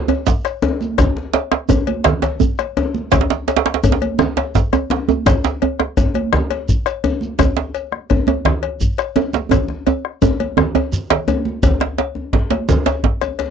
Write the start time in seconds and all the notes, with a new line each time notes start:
0.08 bombo rim, cowbell, djembe slap, djembe tone
0.27 bombo low, djembe slap, shekere
0.45 bombo rim, cowbell, shekere
0.62 cowbell, djembe slap, djembe tone
0.81 high conga, shekere
0.98 bombo rim, bombo low, cowbell, high conga, low conga, djembe bass, shekere
1.16 djembe slap
1.33 bombo rim, cowbell, djembe slap, shekere
1.52 bombo rim, djembe slap, high conga
1.69 bombo low, cowbell, djembe slap, djembe tone, high conga, shekere
1.87 cowbell, djembe slap, high conga
2.04 bombo rim, djembe slap, djembe bass, low conga, shekere
2.22 cowbell, djembe slap, shekere
2.24 djembe slap
2.40 bombo low, djembe slap, djembe tone, shekere
2.58 bombo rim, cowbell, high conga, shekere
2.77 cowbell, djembe slap, high conga, djembe tone
2.94 djembe slap, high conga
3.12 bombo rim, bombo low, cowbell, djembe slap, high conga, djembe bass, low conga, shekere
3.21 djembe slap
3.30 djembe slap, shekere
3.48 cowbell, djembe slap, shekere
3.56 djembe slap
3.66 bombo rim, djembe slap, high conga
3.74 djembe slap
3.84 bombo rim, bombo low, cowbell, djembe slap, djembe tone, high conga, shekere
3.92 djembe slap
4.02 cowbell, djembe slap, high conga
4.19 bombo rim, djembe slap, djembe tone, low conga, djembe bass
4.37 bombo rim, cowbell, djembe slap
4.55 bombo low, djembe slap, shekere
4.73 bombo rim, cowbell, djembe tone, shekere
4.90 djembe slap, djembe tone
5.09 djembe tone, high conga, shekere
5.26 bombo rim, bombo low, cowbell, djembe slap, high conga, djembe bass, low conga, shekere
5.44 djembe slap, shekere
5.62 cowbell, djembe tone
5.79 bombo rim, djembe slap, high conga
5.97 bombo rim, bombo low, cowbell, djembe slap, djembe tone, high conga, shekere
6.14 cowbell, djembe slap, high conga
6.33 bombo rim, djembe slap, low conga, djembe bass
6.50 bombo rim, cowbell, djembe slap
6.69 bombo low, shekere
6.86 bombo rim, cowbell, shekere
7.04 cowbell, djembe slap, djembe tone
7.21 high conga, shekere
7.39 bombo rim, bombo low, cowbell, high conga, djembe tone, low conga, djembe bass, shekere
7.57 djembe slap
7.75 cowbell, shekere
7.92 bombo rim, high conga
8.09 bombo rim, bombo low, cowbell, djembe slap, high conga, djembe tone
8.27 cowbell, djembe slap, high conga, djembe tone
8.45 bombo rim, djembe slap, djembe bass, low conga
8.63 bombo rim, cowbell
8.81 bombo low, shekere
8.98 bombo rim, cowbell, shekere
9.16 cowbell, djembe slap, djembe tone
9.33 djembe slap, high conga, shekere
9.51 bombo rim, bombo low, cowbell, djembe tone, djembe bass, low conga, shekere
9.68 bombo rim, djembe slap, high conga
9.87 cowbell, djembe tone, shekere
10.05 bombo rim
10.22 bombo low, cowbell, djembe slap, djembe tone, shekere
10.40 cowbell, high conga
10.57 bombo rim, djembe slap, djembe tone, high conga, low conga, djembe bass
10.75 cowbell, djembe slap, djembe tone, high conga
10.92 djembe slap, low conga, shekere
11.10 bombo rim, cowbell, djembe slap, low conga
11.28 cowbell, djembe slap, djembe tone, high conga, shekere
11.45 high conga
11.63 bombo low, cowbell, high conga, djembe tone, low conga, djembe bass, shekere
11.80 bombo rim, djembe slap, high conga
11.98 cowbell, djembe slap
12.15 djembe tone, high conga
12.33 bombo low, djembe slap
12.50 cowbell, djembe slap, high conga
12.69 high conga, djembe tone, low conga, djembe bass, shekere
12.86 cowbell, djembe slap, high conga, shekere
13.03 bombo low, djembe slap
13.21 bombo rim, cowbell, djembe tone, shekere
13.39 cowbell, djembe slap, high conga